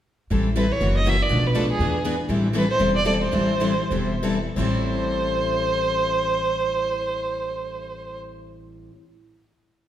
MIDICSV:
0, 0, Header, 1, 5, 480
1, 0, Start_track
1, 0, Key_signature, 0, "minor"
1, 0, Tempo, 249377
1, 581, Time_signature, 4, 2, 24, 8
1, 5383, Tempo, 278552
1, 7303, Tempo, 329489
1, 8263, Tempo, 354820
1, 15447, End_track
2, 0, Start_track
2, 0, Title_t, "Violin"
2, 0, Program_c, 0, 40
2, 1107, Note_on_c, 0, 71, 78
2, 1381, Note_on_c, 0, 73, 87
2, 1410, Note_off_c, 0, 71, 0
2, 1829, Note_off_c, 0, 73, 0
2, 1878, Note_on_c, 0, 75, 80
2, 2101, Note_on_c, 0, 76, 86
2, 2129, Note_off_c, 0, 75, 0
2, 2362, Note_on_c, 0, 74, 82
2, 2391, Note_off_c, 0, 76, 0
2, 2825, Note_on_c, 0, 71, 75
2, 2854, Note_off_c, 0, 74, 0
2, 3270, Note_off_c, 0, 71, 0
2, 3300, Note_on_c, 0, 68, 70
2, 3919, Note_off_c, 0, 68, 0
2, 4961, Note_on_c, 0, 71, 80
2, 5177, Note_off_c, 0, 71, 0
2, 5205, Note_on_c, 0, 72, 82
2, 5618, Note_off_c, 0, 72, 0
2, 5670, Note_on_c, 0, 74, 92
2, 5843, Note_off_c, 0, 74, 0
2, 5852, Note_on_c, 0, 74, 89
2, 5962, Note_off_c, 0, 74, 0
2, 6115, Note_on_c, 0, 72, 83
2, 7720, Note_off_c, 0, 72, 0
2, 8290, Note_on_c, 0, 72, 87
2, 13146, Note_off_c, 0, 72, 0
2, 15447, End_track
3, 0, Start_track
3, 0, Title_t, "Steel-string acoustic guitar"
3, 0, Program_c, 1, 25
3, 582, Note_on_c, 1, 52, 58
3, 587, Note_on_c, 1, 55, 58
3, 598, Note_on_c, 1, 60, 61
3, 599, Note_on_c, 1, 64, 62
3, 611, Note_on_c, 1, 69, 60
3, 923, Note_off_c, 1, 52, 0
3, 925, Note_off_c, 1, 55, 0
3, 931, Note_off_c, 1, 60, 0
3, 931, Note_off_c, 1, 64, 0
3, 937, Note_off_c, 1, 69, 0
3, 1070, Note_on_c, 1, 55, 78
3, 1071, Note_on_c, 1, 52, 74
3, 1076, Note_on_c, 1, 64, 76
3, 1079, Note_on_c, 1, 60, 74
3, 1081, Note_on_c, 1, 69, 78
3, 1254, Note_off_c, 1, 52, 0
3, 1254, Note_off_c, 1, 55, 0
3, 1257, Note_off_c, 1, 64, 0
3, 1258, Note_off_c, 1, 60, 0
3, 1259, Note_off_c, 1, 69, 0
3, 1555, Note_on_c, 1, 54, 61
3, 1570, Note_on_c, 1, 61, 58
3, 1572, Note_on_c, 1, 70, 62
3, 1573, Note_on_c, 1, 64, 61
3, 1888, Note_off_c, 1, 54, 0
3, 1896, Note_off_c, 1, 61, 0
3, 1896, Note_off_c, 1, 70, 0
3, 1897, Note_off_c, 1, 64, 0
3, 2017, Note_on_c, 1, 54, 70
3, 2024, Note_on_c, 1, 61, 73
3, 2041, Note_on_c, 1, 64, 80
3, 2051, Note_on_c, 1, 70, 83
3, 2206, Note_off_c, 1, 54, 0
3, 2210, Note_off_c, 1, 61, 0
3, 2218, Note_off_c, 1, 64, 0
3, 2223, Note_off_c, 1, 70, 0
3, 2486, Note_on_c, 1, 47, 59
3, 2486, Note_on_c, 1, 57, 58
3, 2488, Note_on_c, 1, 62, 69
3, 2493, Note_on_c, 1, 53, 62
3, 2500, Note_on_c, 1, 69, 62
3, 2506, Note_on_c, 1, 71, 66
3, 2833, Note_off_c, 1, 47, 0
3, 2833, Note_off_c, 1, 57, 0
3, 2834, Note_off_c, 1, 62, 0
3, 2836, Note_off_c, 1, 53, 0
3, 2839, Note_off_c, 1, 69, 0
3, 2843, Note_off_c, 1, 71, 0
3, 2975, Note_on_c, 1, 53, 81
3, 2979, Note_on_c, 1, 47, 75
3, 2981, Note_on_c, 1, 62, 84
3, 2986, Note_on_c, 1, 71, 81
3, 2991, Note_on_c, 1, 57, 81
3, 2991, Note_on_c, 1, 69, 87
3, 3164, Note_off_c, 1, 53, 0
3, 3166, Note_off_c, 1, 47, 0
3, 3167, Note_off_c, 1, 62, 0
3, 3170, Note_off_c, 1, 71, 0
3, 3172, Note_off_c, 1, 57, 0
3, 3172, Note_off_c, 1, 69, 0
3, 3451, Note_on_c, 1, 52, 57
3, 3472, Note_on_c, 1, 59, 59
3, 3472, Note_on_c, 1, 68, 62
3, 3476, Note_on_c, 1, 62, 58
3, 3484, Note_on_c, 1, 71, 59
3, 3794, Note_off_c, 1, 52, 0
3, 3805, Note_off_c, 1, 59, 0
3, 3805, Note_off_c, 1, 68, 0
3, 3807, Note_off_c, 1, 62, 0
3, 3811, Note_off_c, 1, 71, 0
3, 3935, Note_on_c, 1, 52, 71
3, 3939, Note_on_c, 1, 68, 73
3, 3947, Note_on_c, 1, 62, 79
3, 3949, Note_on_c, 1, 59, 76
3, 3955, Note_on_c, 1, 71, 80
3, 4123, Note_off_c, 1, 52, 0
3, 4125, Note_off_c, 1, 68, 0
3, 4129, Note_off_c, 1, 62, 0
3, 4131, Note_off_c, 1, 59, 0
3, 4134, Note_off_c, 1, 71, 0
3, 4399, Note_on_c, 1, 52, 58
3, 4407, Note_on_c, 1, 55, 61
3, 4420, Note_on_c, 1, 60, 62
3, 4422, Note_on_c, 1, 64, 64
3, 4431, Note_on_c, 1, 69, 67
3, 4749, Note_off_c, 1, 52, 0
3, 4753, Note_off_c, 1, 55, 0
3, 4759, Note_off_c, 1, 60, 0
3, 4760, Note_off_c, 1, 64, 0
3, 4765, Note_off_c, 1, 69, 0
3, 4875, Note_on_c, 1, 52, 80
3, 4875, Note_on_c, 1, 55, 82
3, 4884, Note_on_c, 1, 60, 77
3, 4892, Note_on_c, 1, 64, 88
3, 4892, Note_on_c, 1, 69, 88
3, 5077, Note_off_c, 1, 52, 0
3, 5077, Note_off_c, 1, 55, 0
3, 5081, Note_off_c, 1, 60, 0
3, 5086, Note_off_c, 1, 64, 0
3, 5086, Note_off_c, 1, 69, 0
3, 5376, Note_on_c, 1, 52, 58
3, 5388, Note_on_c, 1, 55, 67
3, 5389, Note_on_c, 1, 64, 62
3, 5398, Note_on_c, 1, 60, 58
3, 5400, Note_on_c, 1, 69, 69
3, 5701, Note_off_c, 1, 52, 0
3, 5706, Note_off_c, 1, 55, 0
3, 5707, Note_off_c, 1, 64, 0
3, 5711, Note_off_c, 1, 60, 0
3, 5712, Note_off_c, 1, 69, 0
3, 5812, Note_on_c, 1, 52, 69
3, 5820, Note_on_c, 1, 55, 74
3, 5833, Note_on_c, 1, 64, 80
3, 5834, Note_on_c, 1, 60, 79
3, 5834, Note_on_c, 1, 69, 87
3, 6006, Note_off_c, 1, 52, 0
3, 6010, Note_off_c, 1, 55, 0
3, 6016, Note_off_c, 1, 64, 0
3, 6017, Note_off_c, 1, 60, 0
3, 6017, Note_off_c, 1, 69, 0
3, 6295, Note_on_c, 1, 52, 59
3, 6297, Note_on_c, 1, 55, 61
3, 6302, Note_on_c, 1, 69, 70
3, 6303, Note_on_c, 1, 64, 65
3, 6306, Note_on_c, 1, 60, 67
3, 6644, Note_off_c, 1, 52, 0
3, 6645, Note_off_c, 1, 55, 0
3, 6648, Note_off_c, 1, 64, 0
3, 6648, Note_off_c, 1, 69, 0
3, 6649, Note_off_c, 1, 60, 0
3, 6766, Note_on_c, 1, 52, 79
3, 6775, Note_on_c, 1, 60, 78
3, 6779, Note_on_c, 1, 55, 76
3, 6794, Note_on_c, 1, 64, 88
3, 6795, Note_on_c, 1, 69, 88
3, 6978, Note_off_c, 1, 52, 0
3, 6982, Note_off_c, 1, 60, 0
3, 6984, Note_off_c, 1, 55, 0
3, 6991, Note_off_c, 1, 64, 0
3, 6992, Note_off_c, 1, 69, 0
3, 7294, Note_on_c, 1, 52, 53
3, 7300, Note_on_c, 1, 60, 64
3, 7308, Note_on_c, 1, 64, 64
3, 7309, Note_on_c, 1, 55, 60
3, 7311, Note_on_c, 1, 69, 61
3, 7626, Note_off_c, 1, 52, 0
3, 7629, Note_off_c, 1, 60, 0
3, 7633, Note_off_c, 1, 55, 0
3, 7633, Note_off_c, 1, 64, 0
3, 7634, Note_off_c, 1, 69, 0
3, 7779, Note_on_c, 1, 52, 70
3, 7783, Note_on_c, 1, 55, 74
3, 7787, Note_on_c, 1, 60, 73
3, 7789, Note_on_c, 1, 69, 79
3, 7793, Note_on_c, 1, 64, 80
3, 7964, Note_off_c, 1, 52, 0
3, 7966, Note_off_c, 1, 55, 0
3, 7968, Note_off_c, 1, 60, 0
3, 7969, Note_off_c, 1, 69, 0
3, 7972, Note_off_c, 1, 64, 0
3, 8273, Note_on_c, 1, 45, 83
3, 8280, Note_on_c, 1, 52, 73
3, 8291, Note_on_c, 1, 55, 76
3, 8294, Note_on_c, 1, 60, 78
3, 8300, Note_on_c, 1, 69, 83
3, 8307, Note_on_c, 1, 64, 76
3, 14138, Note_off_c, 1, 45, 0
3, 14142, Note_off_c, 1, 52, 0
3, 14148, Note_off_c, 1, 55, 0
3, 14149, Note_off_c, 1, 60, 0
3, 14152, Note_off_c, 1, 69, 0
3, 14155, Note_off_c, 1, 64, 0
3, 15447, End_track
4, 0, Start_track
4, 0, Title_t, "Steel-string acoustic guitar"
4, 0, Program_c, 2, 25
4, 1545, Note_on_c, 2, 49, 57
4, 1557, Note_on_c, 2, 58, 58
4, 1562, Note_on_c, 2, 52, 59
4, 1572, Note_on_c, 2, 66, 62
4, 1883, Note_off_c, 2, 49, 0
4, 1889, Note_off_c, 2, 58, 0
4, 1891, Note_off_c, 2, 52, 0
4, 1896, Note_off_c, 2, 66, 0
4, 2043, Note_on_c, 2, 52, 68
4, 2046, Note_on_c, 2, 49, 71
4, 2051, Note_on_c, 2, 58, 76
4, 2058, Note_on_c, 2, 66, 88
4, 2219, Note_off_c, 2, 52, 0
4, 2220, Note_off_c, 2, 49, 0
4, 2223, Note_off_c, 2, 58, 0
4, 2227, Note_off_c, 2, 66, 0
4, 15447, End_track
5, 0, Start_track
5, 0, Title_t, "Upright bass"
5, 0, Program_c, 3, 32
5, 591, Note_on_c, 3, 33, 72
5, 1353, Note_off_c, 3, 33, 0
5, 1554, Note_on_c, 3, 30, 74
5, 2314, Note_off_c, 3, 30, 0
5, 2511, Note_on_c, 3, 35, 76
5, 3271, Note_off_c, 3, 35, 0
5, 3449, Note_on_c, 3, 40, 75
5, 4218, Note_off_c, 3, 40, 0
5, 4405, Note_on_c, 3, 33, 79
5, 5186, Note_off_c, 3, 33, 0
5, 5384, Note_on_c, 3, 28, 69
5, 6118, Note_off_c, 3, 28, 0
5, 6304, Note_on_c, 3, 33, 77
5, 7105, Note_off_c, 3, 33, 0
5, 7295, Note_on_c, 3, 28, 65
5, 8067, Note_off_c, 3, 28, 0
5, 8257, Note_on_c, 3, 33, 77
5, 14076, Note_off_c, 3, 33, 0
5, 15447, End_track
0, 0, End_of_file